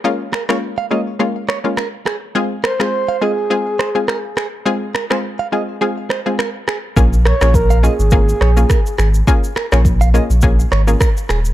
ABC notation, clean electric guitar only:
X:1
M:4/4
L:1/16
Q:"Swing 16ths" 1/4=104
K:Bbm
V:1 name="Clean electric guitar"
z2 B d z f e z3 d z B z A z | z2 B c z f e z3 c z B z A z | z2 B c z f e z3 c z B z A z | z2 B d z f e z3 d z B z A z |
z2 B d z f e z3 d z B z A z |]